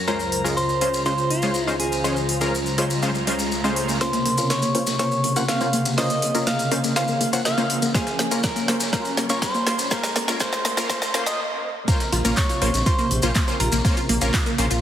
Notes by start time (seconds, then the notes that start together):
Already playing: A#5
0.07 C#2 C#3 G#3 C#4 F4 A#4 C5, riser, maracas
0.19 maracas
0.32 open hi-hat
0.44 G#3 C#4 F4 A#4, maracas
0.57 C5, maracas
0.69 maracas
0.81 G#3 C#4 F4 C5, open hi-hat
0.94 maracas
1.06 G#3 C#4 F4 C5, maracas
1.18 maracas
1.30 F4, open hi-hat
1.42 G#3 C#4 F4 C5, maracas
1.54 maracas
1.67 G#3 C#4 F4 C5, maracas
1.80 G#4, open hi-hat
1.92 maracas
2.04 G#3 C#4 F4 C5, maracas
2.16 maracas
2.29 open hi-hat
2.41 G#3 C#4 F4 A#4, maracas
2.55 maracas
2.66 maracas
2.78 G#3 C#4 F4 C5, open hi-hat
2.90 maracas
3.02 G#3 C#4 F4 C5, maracas
3.15 maracas
3.27 G#3 C#4 F4 C5, open hi-hat
3.39 maracas
3.52 maracas
3.64 G#3 C#4 F4 C5, maracas
3.76 open hi-hat
3.89 maracas
4.01 C3 C#3 A#3 C#4 F4 C5, snare, closed hi-hat, riser, maracas
4.13 A#3, snare, closed hi-hat, maracas
4.26 A#1 A#3, snare, closed hi-hat, open hi-hat
4.38 A#1 A#3 C#4 F4 A#4, closed hi-hat, maracas
4.50 A#3 C#5, snare, closed hi-hat, maracas
4.62 A#3, closed hi-hat, maracas
4.75 A#1 A#3 C#4 F4 C5, closed hi-hat, open hi-hat
4.87 A#1 A#3, snare, closed hi-hat, maracas
4.99 A#3 C#4 F4 C5 C#5, snare, closed hi-hat, maracas
5.12 maracas
5.24 A#1 A#3, closed hi-hat, open hi-hat
5.36 A#1 A#3 C#4 F4 C5 F#5, closed hi-hat, maracas
5.48 F5, snare, closed hi-hat, maracas
5.61 A#3 C#4 F4 C5, closed hi-hat, maracas
5.73 A#1 A#3, closed hi-hat, open hi-hat
5.85 A#1, closed hi-hat, maracas
5.98 A#3 C#4 F4 C5 D#5, snare, closed hi-hat, open hi-hat, maracas
6.10 A#3, closed hi-hat, maracas
6.22 A#1, closed hi-hat, open hi-hat
6.35 A#1 A#3 C#4 F4 A#4, closed hi-hat, maracas
6.47 A#3 F5, snare, closed hi-hat, maracas
6.59 closed hi-hat, maracas
6.71 A#1 A#3 C#4 F4 C5, closed hi-hat, open hi-hat
6.84 A#1 A#3, closed hi-hat, maracas
6.96 A#3 C#4 F4 C5 F5, snare, closed hi-hat, maracas
7.08 A#3, maracas
7.21 A#1 A#3, closed hi-hat, open hi-hat
7.33 A#1 A#3 C#4 F4 C5 F#5, closed hi-hat, maracas
7.45 A#3 F5, snare, closed hi-hat, maracas
7.58 A#3 C#4 F4 C5, closed hi-hat, maracas
7.70 A#1, closed hi-hat, open hi-hat
7.82 A#1 A#3, closed hi-hat, maracas
7.94 A#3 C#4 F4 G#4 C5, kick, snare, closed hi-hat, maracas
8.07 snare, closed hi-hat, maracas
8.19 A#1 A#3, snare, closed hi-hat, open hi-hat
8.31 A#1 A#3 C#4 F4 A#4, closed hi-hat, maracas
8.43 A#4, kick, snare, closed hi-hat, maracas
8.56 A#3, closed hi-hat, maracas
8.68 A#1 A#3 C#4 F4 C5, snare, closed hi-hat, open hi-hat
8.80 A#1, snare, closed hi-hat, maracas
8.93 A#3 C#4 F4 A#4 C5, kick, snare, closed hi-hat, maracas
9.05 maracas
9.17 A#1 A#3, snare, closed hi-hat, open hi-hat
9.29 A#1 A#3 C#4 F4 A#4 C#5, closed hi-hat, maracas
9.42 C5, kick, snare, closed hi-hat, maracas
9.54 A#3, closed hi-hat, maracas
9.67 A#1 A#3 C#4 F4 C5, snare, closed hi-hat, open hi-hat
9.79 A#1, closed hi-hat, maracas
9.90 A#3 C#4 F4 A#4 C5, kick, snare, closed hi-hat, open hi-hat, maracas
10.03 snare, closed hi-hat, maracas
10.16 A#1 A#3, snare, closed hi-hat, open hi-hat
10.28 A#1 A#3 C#4 F4 A#4, snare, closed hi-hat, maracas
10.40 A#3 C#4 F4 C5, kick, snare, closed hi-hat, maracas
10.52 snare, closed hi-hat, maracas
10.65 A#1 A#3, snare, closed hi-hat, open hi-hat
10.77 A#1 A#3 C#4 F4 A#4, snare, closed hi-hat, maracas
10.90 A#3 C#4 F4 C5, kick, snare, closed hi-hat, maracas
11.02 snare, closed hi-hat, maracas
11.14 A#1 A#3 C#4 F4 C5, snare, closed hi-hat, open hi-hat
11.26 A#1 D#5, snare, closed hi-hat, maracas
11.88 C3 C#3 A#3 C#4 F4 A#4 C5, kick, closed hi-hat, maracas
12.00 snare, closed hi-hat, maracas
12.12 A#1 F4, snare, closed hi-hat, open hi-hat
12.25 A#1 A#3 C#4 F4 A#4, closed hi-hat, maracas
12.37 C#5, kick, snare, clap, closed hi-hat, maracas
12.49 F4, closed hi-hat, maracas
12.62 A#1 A#3 C#4 F4 C5, closed hi-hat, open hi-hat
12.74 A#1, snare, closed hi-hat, maracas
12.86 A#3 C#4 F4 C5, kick, closed hi-hat, maracas
12.99 A#3, maracas
13.11 A#1, closed hi-hat, open hi-hat
13.22 A#1 A#3 C#4 F4 C5, closed hi-hat, maracas
13.35 A#3, kick, snare, clap, closed hi-hat, maracas
13.48 A#3 C#4 F4 C5, closed hi-hat, maracas
13.60 A#1 F4 A#4, closed hi-hat, open hi-hat
13.72 A#1 A#3, closed hi-hat, maracas
13.85 A#3 C#4 F4 C5, kick, closed hi-hat, open hi-hat, maracas
13.97 F4, closed hi-hat, maracas
14.09 A#1 A#3, closed hi-hat, open hi-hat
14.21 A#1 A#3 C#4 F4 A#4, closed hi-hat, maracas
14.34 F4, kick, snare, clap, closed hi-hat, maracas
14.46 A#3, closed hi-hat, maracas
14.58 A#1 A#3 C#4 F4 C5, closed hi-hat, open hi-hat
14.71 A#1 F4, closed hi-hat, maracas